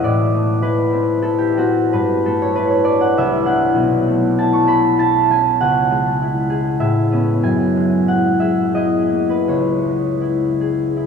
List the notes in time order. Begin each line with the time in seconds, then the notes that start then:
Already playing: E4 B4 D#5
0.03 A2 D5
0.34 A3
0.62 E4 B4
0.92 C4
1.22 E4 A4
1.38 G4
1.57 C4 F#4
1.93 G2 B4
2.26 A3 A4
2.42 C#5
2.55 E4 B4
2.71 C#5
2.84 D4 D5
3.01 F#5
3.17 C2 E5
3.44 D4 E4 F#5
3.75 B1
4.08 A3
4.38 E4 A5
4.53 C#6
4.67 A4 B5
4.98 E4 A5
5.30 C#4 G#5
5.61 C#2 F#5
5.91 G#3
6.22 E4
6.50 G#4
6.80 A2 E5
7.12 B3 C#4
7.43 F#2 G#5
7.76 G#3
8.08 E4 F#5
8.40 G#4 E5
8.75 E4 D#5
9.09 A#3
9.29 B4
9.48 C#2 C#5
9.86 G#3
10.22 E4
10.61 G#4
10.97 E4